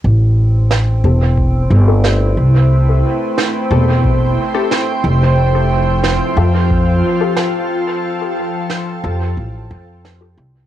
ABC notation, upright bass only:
X:1
M:4/4
L:1/8
Q:1/4=90
K:Am
V:1 name="Upright bass" clef=bass
A,,,3 E,,,2 G,,,2 C,,- | C,, z2 E,,,2 z2 F,,,- | F,,,2 z F,,2 z3 | z3 F,, A,,, F,,2 C,, |]